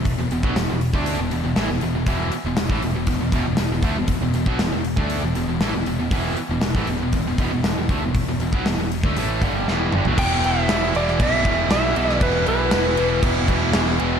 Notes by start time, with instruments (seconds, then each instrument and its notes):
Already playing: picked electric bass E1, distorted electric guitar E2 B2
0.05 kick, open hi-hat
0.18 picked electric bass E1, distorted electric guitar E2 B2
0.31 picked electric bass E1, distorted electric guitar E2 B2, open hi-hat
0.43 picked electric bass B1, distorted electric guitar B2 F#3, kick
0.56 picked electric bass E1, distorted electric guitar E2 B2, snare, open hi-hat
0.69 picked electric bass E1, distorted electric guitar E2 B2
0.81 open hi-hat
0.93 picked electric bass D2, distorted electric guitar D3 A3 D4, kick
1.06 open hi-hat
1.18 picked electric bass E1, distorted electric guitar E2 B2
1.31 picked electric bass E1, distorted electric guitar E2 B2, open hi-hat
1.44 picked electric bass E1, distorted electric guitar E2 B2
1.56 picked electric bass A1, distorted electric guitar A2 E3, snare, open hi-hat
1.68 picked electric bass E1, distorted electric guitar E2 B2
1.81 picked electric bass E1, distorted electric guitar E2 B2, open hi-hat
1.93 picked electric bass E1, distorted electric guitar E2 B2
2.06 picked electric bass E1, distorted electric guitar E2 B2 E3, kick, open hi-hat
2.32 muted picked electric bass stroke, muted distorted electric guitar stroke, open hi-hat
2.45 picked electric bass E1, distorted electric guitar E2 B2
2.57 picked electric bass E1, distorted electric guitar E2 B2, snare, open hi-hat
2.69 picked electric bass A1, distorted electric guitar A2 E3, kick
2.82 picked electric bass E1, distorted electric guitar E2 B2, open hi-hat
2.95 picked electric bass E1, distorted electric guitar E2 B2
3.07 picked electric bass E1, distorted electric guitar E2 B2, kick, open hi-hat
3.20 picked electric bass E1, distorted electric guitar E2 B2
3.32 picked electric bass E1, distorted electric guitar E2 B2, kick, open hi-hat
3.46 picked electric bass E1, distorted electric guitar E2 B2
3.57 picked electric bass E1, distorted electric guitar E2 B2, snare, open hi-hat
3.70 picked electric bass E1, distorted electric guitar E2 B2
3.82 picked electric bass D2, distorted electric guitar D3 A3, kick, open hi-hat
3.96 picked electric bass E1, distorted electric guitar E2 B2
4.08 kick, open hi-hat
4.21 picked electric bass E1, distorted electric guitar E2 B2
4.34 picked electric bass E1, distorted electric guitar E2 B2, open hi-hat
4.46 picked electric bass B1, distorted electric guitar B2 F#3, kick
4.59 picked electric bass E1, distorted electric guitar E2 B2, snare, open hi-hat
4.72 picked electric bass E1, distorted electric guitar E2 B2
4.85 open hi-hat
4.97 picked electric bass D2, distorted electric guitar D3 A3 D4, kick
5.10 open hi-hat
5.23 picked electric bass E1, distorted electric guitar E2 B2
5.35 picked electric bass E1, distorted electric guitar E2 B2, open hi-hat
5.48 picked electric bass E1, distorted electric guitar E2 B2
5.60 picked electric bass A1, distorted electric guitar A2 E3, snare, open hi-hat
5.73 picked electric bass E1, distorted electric guitar E2 B2
5.85 picked electric bass E1, distorted electric guitar E2 B2, open hi-hat
5.98 picked electric bass E1, distorted electric guitar E2 B2
6.11 picked electric bass E1, distorted electric guitar E2 B2 E3, kick, open hi-hat
6.36 muted picked electric bass stroke, muted distorted electric guitar stroke, open hi-hat
6.49 picked electric bass E1, distorted electric guitar E2 B2
6.61 picked electric bass E1, distorted electric guitar E2 B2, snare, open hi-hat
6.75 picked electric bass A1, distorted electric guitar A2 E3, kick
6.87 picked electric bass E1, distorted electric guitar E2 B2, open hi-hat
7.01 picked electric bass E1, distorted electric guitar E2 B2
7.13 picked electric bass E1, distorted electric guitar E2 B2, kick, open hi-hat
7.25 picked electric bass E1, distorted electric guitar E2 B2
7.38 picked electric bass E1, distorted electric guitar E2 B2, kick, open hi-hat
7.51 picked electric bass E1, distorted electric guitar E2 B2
7.63 picked electric bass E1, distorted electric guitar E2 B2, snare, open hi-hat
7.77 picked electric bass E1, distorted electric guitar E2 B2
7.89 picked electric bass D2, distorted electric guitar D3 A3, kick, open hi-hat
8.02 picked electric bass E1, distorted electric guitar E2 B2
8.15 kick, open hi-hat
8.27 picked electric bass E1, distorted electric guitar E2 B2
8.39 picked electric bass E1, distorted electric guitar E2 B2, open hi-hat
8.52 picked electric bass B1, distorted electric guitar B2 F#3, kick
8.65 picked electric bass E1, distorted electric guitar E2 B2, snare, open hi-hat
8.78 picked electric bass E1, distorted electric guitar E2 B2
8.92 open hi-hat
9.03 picked electric bass D2, distorted electric guitar D3 A3, kick
9.16 picked electric bass A1, distorted electric guitar A2 E3 A3, open hi-hat
9.42 picked electric bass G1, distorted electric guitar G2 D3 G3, kick, open hi-hat
9.68 picked electric bass E1, distorted electric guitar E2 B2 E3, snare
9.92 picked electric bass G1, distorted electric guitar G2 D3, mid tom
10.05 picked electric bass B1, distorted electric guitar B2 F#3, floor tom
10.18 picked electric bass E1, distorted electric guitar E2 B2 E3, lead electric guitar G5, kick, crash
10.44 picked electric bass E1, distorted electric guitar E2 B2 E3, lead electric guitar E5, crash
10.69 picked electric bass E1, distorted electric guitar E2 B2 E3, snare, crash
10.95 picked electric bass E1, distorted electric guitar E2 B2 E3, lead electric guitar D5, crash
11.08 snare
11.20 picked electric bass B1, distorted electric guitar E2 B2 E3, lead electric guitar E5, kick, crash
11.45 picked electric bass E1, distorted electric guitar E2 B2 E3, kick, crash
11.71 picked electric bass B1, distorted electric guitar E2 B2 E3, lead electric guitar E5, snare, crash
11.96 picked electric bass B1, distorted electric guitar E2 B2 E3, crash
12.09 lead electric guitar D5, snare
12.21 picked electric bass E1, distorted electric guitar E2 B2 E3, lead electric guitar B4, kick, crash
12.46 picked electric bass B1, distorted electric guitar E2 B2 E3, lead electric guitar B4, crash
12.71 picked electric bass E1, distorted electric guitar E2 B2 E3, snare, crash
12.97 picked electric bass E1, distorted electric guitar E2 B2 E3, crash
13.22 picked electric bass E1, distorted electric guitar E2 B2 E3, kick, crash
13.48 picked electric bass E1, distorted electric guitar E2 B2 E3, kick, crash
13.73 picked electric bass E1, distorted electric guitar E2 B2 E3, snare, crash
14.00 picked electric bass E1, distorted electric guitar E2 B2 E3, crash